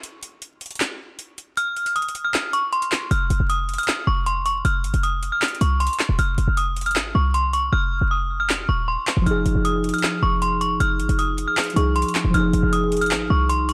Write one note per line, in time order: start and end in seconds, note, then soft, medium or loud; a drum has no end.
0.03 closed hi-hat medium
0.23 closed hi-hat medium
0.42 closed hi-hat medium
0.61 closed hi-hat medium
0.66 closed hi-hat medium
0.71 closed hi-hat medium
0.75 closed hi-hat medium
0.80 clap loud
0.80 closed hi-hat medium
1.19 closed hi-hat medium
1.38 closed hi-hat medium
1.57 1.93 F6 loud
1.57 closed hi-hat medium
1.76 closed hi-hat soft
1.86 closed hi-hat medium
1.96 2.23 D#6 medium
1.96 closed hi-hat medium
2.02 closed hi-hat medium
2.08 closed hi-hat medium
2.15 closed hi-hat medium
2.25 2.52 F6 medium
2.34 clap loud
2.34 closed hi-hat medium
2.53 2.69 C#6 medium
2.53 closed hi-hat medium
2.73 3.09 C6 medium
2.73 closed hi-hat soft
2.82 closed hi-hat medium
2.92 clap medium
2.92 closed hi-hat medium
3.11 3.29 F1 loud
3.11 3.47 F6 medium
3.11 closed hi-hat medium
3.30 3.39 F1 loud
3.30 closed hi-hat medium
3.40 3.77 F1 loud
3.49 3.77 D#6 medium
3.49 closed hi-hat medium
3.69 closed hi-hat medium
3.73 closed hi-hat medium
3.78 4.05 F6 medium
3.78 closed hi-hat medium
3.83 closed hi-hat medium
3.88 clap loud
3.88 closed hi-hat medium
4.07 4.63 F1 loud
4.07 4.23 C#6 medium
4.26 4.43 C6 medium
4.26 closed hi-hat medium
4.46 4.62 C#6 medium
4.46 closed hi-hat medium
4.65 4.86 F1 loud
4.65 5.01 F6 loud
4.65 closed hi-hat medium
4.84 4.93 G1 loud
4.84 closed hi-hat medium
4.94 5.31 F1 medium
4.94 closed hi-hat medium
5.03 5.30 D#6 medium
5.03 closed hi-hat medium
5.23 closed hi-hat medium
5.32 5.59 F6 medium
5.42 clap loud
5.42 closed hi-hat medium
5.48 closed hi-hat medium
5.55 closed hi-hat medium
5.61 5.89 C2 loud
5.61 5.77 C#6 medium
5.61 closed hi-hat medium
5.80 6.16 C6 medium
5.80 closed hi-hat medium
5.87 closed hi-hat medium
5.93 closed hi-hat medium
5.99 clap medium
5.99 closed hi-hat medium
6.09 6.18 D#1 loud
6.19 6.37 F1 loud
6.19 6.55 F6 loud
6.19 closed hi-hat medium
6.38 6.47 F1 loud
6.38 closed hi-hat medium
6.48 6.97 F1 loud
6.57 6.84 D#6 medium
6.57 closed hi-hat medium
6.76 closed hi-hat medium
6.81 closed hi-hat medium
6.86 7.13 F6 medium
6.86 closed hi-hat medium
6.91 closed hi-hat medium
6.96 7.14 G#1 medium
6.96 clap loud
6.96 closed hi-hat medium
7.15 7.70 C2 loud
7.15 7.31 C#6 medium
7.34 7.50 C6 medium
7.34 closed hi-hat medium
7.53 7.69 C#6 medium
7.53 closed hi-hat medium
7.73 8.00 F1 loud
7.73 8.09 F6 loud
8.01 8.66 F1 loud
8.11 8.38 D#6 medium
8.40 8.67 F6 medium
8.49 clap loud
8.69 8.96 D#1 loud
8.69 8.85 C#6 medium
8.88 9.24 C6 medium
9.07 clap medium
9.17 9.26 F1 loud
9.22 11.70 F3 medium
9.26 9.45 F1 loud
9.26 11.72 D#4 medium
9.26 9.63 F6 medium
9.26 closed hi-hat medium
9.30 11.74 G#4 medium
9.46 9.55 F1 loud
9.46 closed hi-hat medium
9.55 9.92 F1 loud
9.65 9.92 D#6 medium
9.65 closed hi-hat medium
9.84 closed hi-hat medium
9.89 closed hi-hat medium
9.94 10.21 F6 medium
9.94 closed hi-hat medium
9.99 closed hi-hat medium
10.03 clap loud
10.03 closed hi-hat medium
10.23 10.78 F1 loud
10.23 10.39 C#6 medium
10.42 10.58 C6 medium
10.42 closed hi-hat medium
10.61 10.77 C#6 medium
10.61 closed hi-hat medium
10.80 11.01 F1 loud
10.80 11.16 F6 loud
10.80 closed hi-hat medium
10.99 11.09 G1 loud
10.99 closed hi-hat medium
11.09 11.46 F1 loud
11.09 closed hi-hat medium
11.19 11.46 D#6 medium
11.19 closed hi-hat medium
11.38 closed hi-hat medium
11.48 11.75 F6 medium
11.57 clap loud
11.57 closed hi-hat medium
11.64 closed hi-hat medium
11.70 12.29 F3 medium
11.70 closed hi-hat medium
11.76 12.04 C2 loud
11.76 12.33 D#4 soft
11.76 12.35 G#4 medium
11.76 11.92 C#6 medium
11.76 closed hi-hat medium
11.96 12.32 C6 medium
11.96 closed hi-hat medium
12.02 closed hi-hat medium
12.08 closed hi-hat medium
12.15 clap medium
12.15 closed hi-hat medium
12.24 12.33 D#1 loud
12.30 12.53 F1 loud
12.30 13.73 F3 medium
12.34 13.73 D#4 medium
12.34 12.70 F6 loud
12.34 closed hi-hat medium
12.39 13.73 G#4 medium
12.53 12.63 F1 loud
12.53 closed hi-hat medium
12.63 13.13 F1 loud
12.73 13.00 D#6 medium
12.73 closed hi-hat medium
12.92 closed hi-hat medium
12.97 closed hi-hat medium
13.01 13.29 F6 medium
13.01 closed hi-hat medium
13.06 closed hi-hat medium
13.11 13.29 G#1 loud
13.11 clap loud
13.11 closed hi-hat medium
13.30 13.73 C2 loud
13.30 13.46 C#6 medium
13.49 13.66 C6 medium
13.49 closed hi-hat medium
13.69 13.73 C#6 medium
13.69 closed hi-hat medium